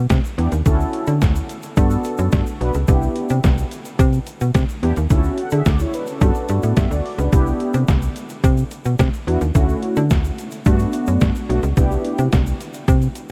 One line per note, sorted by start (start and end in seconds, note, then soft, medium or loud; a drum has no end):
0.10 0.20 C3 loud
0.10 kick loud
0.10 snare loud
0.10 closed hi-hat medium
0.10 shaker medium
0.24 closed hi-hat soft
0.24 shaker medium
0.38 0.48 E2 medium
0.38 0.49 B3 medium
0.38 0.49 D4 medium
0.38 0.50 E4 medium
0.38 0.50 G4 medium
0.38 closed hi-hat medium
0.52 0.62 D#2 medium
0.52 closed hi-hat soft
0.52 shaker medium
0.66 0.86 D2 medium
0.66 1.12 C#4 medium
0.66 1.12 E4 medium
0.66 1.12 F#4 medium
0.66 1.12 A4 medium
0.66 kick loud
0.66 closed hi-hat medium
0.66 shaker medium
0.80 shaker soft
0.93 closed hi-hat medium
1.07 1.23 D3 medium
1.07 closed hi-hat medium
1.07 shaker medium
1.22 1.42 D2 medium
1.22 kick medium
1.22 snare medium
1.22 closed hi-hat medium
1.22 shaker medium
1.36 closed hi-hat soft
1.36 shaker medium
1.49 closed hi-hat medium
1.49 shaker soft
1.63 closed hi-hat medium
1.63 shaker medium
1.77 1.97 G2 loud
1.77 2.44 B3 medium
1.77 2.44 D4 medium
1.77 2.44 F#4 medium
1.77 2.44 A4 loud
1.77 kick loud
1.77 closed hi-hat medium
1.77 shaker medium
1.90 closed hi-hat soft
1.90 shaker soft
2.04 closed hi-hat medium
2.04 shaker soft
2.18 2.29 F#2 medium
2.18 closed hi-hat soft
2.18 shaker medium
2.32 2.43 G2 loud
2.32 kick loud
2.32 snare loud
2.32 closed hi-hat medium
2.32 shaker medium
2.47 closed hi-hat soft
2.47 shaker soft
2.60 2.71 B1 medium
2.60 2.72 B3 medium
2.60 2.72 D4 medium
2.60 2.72 F#4 medium
2.60 2.72 B4 medium
2.60 closed hi-hat medium
2.74 2.84 C#2 medium
2.74 closed hi-hat soft
2.74 shaker soft
2.88 3.08 C2 loud
2.88 3.34 B3 medium
2.88 3.34 D4 medium
2.88 3.34 E4 medium
2.88 3.34 G4 medium
2.88 kick loud
2.88 closed hi-hat medium
2.88 shaker medium
3.02 shaker soft
3.16 closed hi-hat medium
3.29 3.40 C3 medium
3.29 closed hi-hat medium
3.29 shaker medium
3.44 3.64 C2 medium
3.44 kick loud
3.44 snare loud
3.44 closed hi-hat medium
3.44 shaker medium
3.58 closed hi-hat soft
3.58 shaker medium
3.71 closed hi-hat medium
3.71 shaker soft
3.85 closed hi-hat soft
3.85 shaker medium
3.99 4.19 C3 loud
3.99 kick loud
3.99 closed hi-hat medium
3.99 shaker medium
4.13 closed hi-hat soft
4.13 shaker soft
4.27 closed hi-hat medium
4.27 shaker soft
4.41 4.51 B2 medium
4.41 closed hi-hat soft
4.41 shaker medium
4.54 4.65 C3 loud
4.54 kick loud
4.54 snare loud
4.54 closed hi-hat medium
4.54 shaker medium
4.69 closed hi-hat soft
4.69 shaker soft
4.82 4.93 E2 medium
4.82 4.94 B3 medium
4.82 4.94 D4 medium
4.82 4.94 E4 medium
4.82 4.94 G4 loud
4.82 closed hi-hat medium
4.96 5.07 D#2 medium
4.96 closed hi-hat soft
4.96 shaker soft
5.10 5.30 D2 medium
5.10 5.38 C#4 medium
5.10 5.38 E4 medium
5.10 5.17 F4 medium
5.10 5.38 A4 medium
5.10 kick loud
5.10 closed hi-hat medium
5.10 shaker medium
5.17 5.41 F#4 medium
5.24 shaker soft
5.38 5.52 A4 medium
5.38 5.51 F#5 medium
5.38 closed hi-hat medium
5.50 5.62 D3 medium
5.50 5.66 G#4 medium
5.50 5.65 E5 medium
5.50 closed hi-hat medium
5.50 shaker medium
5.66 5.86 D2 medium
5.66 5.79 F#4 medium
5.66 5.79 D5 medium
5.66 kick loud
5.66 snare loud
5.66 closed hi-hat medium
5.66 shaker medium
5.79 5.93 E4 medium
5.79 5.93 C#5 medium
5.79 closed hi-hat soft
5.79 shaker medium
5.93 6.07 D4 medium
5.93 6.07 B4 medium
5.93 closed hi-hat medium
5.93 shaker soft
6.07 6.34 C#4 medium
6.07 6.21 A4 medium
6.07 closed hi-hat soft
6.07 shaker soft
6.21 6.31 G2 loud
6.21 6.88 B3 medium
6.21 6.77 D4 medium
6.21 6.77 F#4 medium
6.21 6.77 A4 medium
6.21 kick loud
6.21 closed hi-hat medium
6.21 shaker medium
6.35 closed hi-hat soft
6.35 shaker soft
6.49 6.59 G2 medium
6.49 closed hi-hat medium
6.49 shaker soft
6.63 6.73 A2 medium
6.63 closed hi-hat soft
6.63 shaker medium
6.77 6.87 G2 loud
6.77 6.91 G4 medium
6.77 6.90 E5 medium
6.77 kick loud
6.77 snare loud
6.77 closed hi-hat medium
6.77 shaker medium
6.91 7.01 D2 medium
6.91 7.18 F#4 medium
6.91 7.17 D5 medium
6.91 closed hi-hat soft
6.91 shaker soft
7.06 open hi-hat medium
7.18 7.28 C#2 medium
7.18 7.31 D4 medium
7.18 7.45 B4 medium
7.18 closed hi-hat soft
7.18 shaker soft
7.32 7.53 C2 loud
7.32 7.79 B3 medium
7.32 7.79 D4 medium
7.32 7.79 E4 medium
7.32 7.79 G4 loud
7.32 kick loud
7.32 closed hi-hat medium
7.32 shaker medium
7.47 shaker soft
7.60 closed hi-hat medium
7.74 7.84 C3 medium
7.74 closed hi-hat medium
7.74 shaker medium
7.88 8.08 C2 loud
7.88 kick loud
7.88 snare loud
7.88 closed hi-hat medium
7.88 shaker medium
8.02 closed hi-hat soft
8.02 shaker medium
8.16 closed hi-hat medium
8.16 shaker soft
8.29 closed hi-hat soft
8.29 shaker medium
8.44 8.64 C3 loud
8.44 kick loud
8.44 closed hi-hat medium
8.44 shaker medium
8.57 closed hi-hat soft
8.57 shaker medium
8.71 closed hi-hat medium
8.71 shaker soft
8.85 8.95 B2 medium
8.85 closed hi-hat soft
8.85 shaker medium
8.99 9.09 C3 loud
8.99 kick loud
8.99 snare loud
8.99 closed hi-hat medium
8.99 shaker medium
9.14 closed hi-hat soft
9.14 shaker soft
9.27 9.37 E2 medium
9.27 9.38 B3 medium
9.27 9.38 D4 medium
9.27 9.39 E4 medium
9.27 9.39 F#4 medium
9.27 closed hi-hat medium
9.41 9.51 D#2 medium
9.41 closed hi-hat soft
9.41 shaker soft
9.54 9.75 D2 medium
9.54 10.01 A3 medium
9.54 10.01 C#4 medium
9.54 10.01 E4 medium
9.54 10.01 F#4 loud
9.54 kick loud
9.54 closed hi-hat medium
9.54 shaker medium
9.69 shaker soft
9.83 closed hi-hat medium
9.96 10.12 D3 loud
9.96 closed hi-hat medium
9.96 shaker medium
10.10 10.31 D2 medium
10.10 kick loud
10.10 snare loud
10.10 closed hi-hat medium
10.10 shaker medium
10.24 closed hi-hat soft
10.24 shaker medium
10.38 closed hi-hat medium
10.38 shaker soft
10.51 closed hi-hat soft
10.51 shaker medium
10.65 10.86 G2 loud
10.65 11.32 A3 medium
10.65 11.32 B3 medium
10.65 11.32 D4 medium
10.65 11.33 F#4 loud
10.65 kick loud
10.65 closed hi-hat medium
10.65 shaker medium
10.79 closed hi-hat soft
10.79 shaker soft
10.93 closed hi-hat medium
10.93 shaker soft
11.07 11.18 F#2 medium
11.07 closed hi-hat soft
11.07 shaker medium
11.21 11.31 G2 medium
11.21 kick loud
11.21 snare loud
11.21 closed hi-hat medium
11.21 shaker medium
11.35 closed hi-hat soft
11.35 shaker soft
11.49 11.59 B1 medium
11.49 11.60 A3 medium
11.49 11.61 B3 medium
11.49 11.61 D4 medium
11.49 11.61 F#4 medium
11.49 closed hi-hat medium
11.63 11.73 C#2 medium
11.63 closed hi-hat soft
11.63 shaker soft
11.76 11.97 C2 medium
11.76 12.23 B3 medium
11.76 12.23 D4 medium
11.76 12.23 E4 medium
11.76 12.23 G4 medium
11.76 kick loud
11.76 closed hi-hat medium
11.76 shaker medium
11.91 shaker soft
12.05 closed hi-hat medium
12.18 12.29 C3 medium
12.18 closed hi-hat medium
12.18 shaker medium
12.32 12.53 C2 medium
12.32 kick loud
12.32 snare loud
12.32 closed hi-hat medium
12.32 shaker medium
12.47 closed hi-hat soft
12.47 shaker medium
12.61 closed hi-hat medium
12.61 shaker soft
12.74 closed hi-hat soft
12.74 shaker soft
12.88 13.08 C3 loud
12.88 kick loud
12.88 closed hi-hat medium
12.88 shaker medium
13.02 closed hi-hat soft
13.02 shaker soft
13.15 closed hi-hat medium
13.15 shaker soft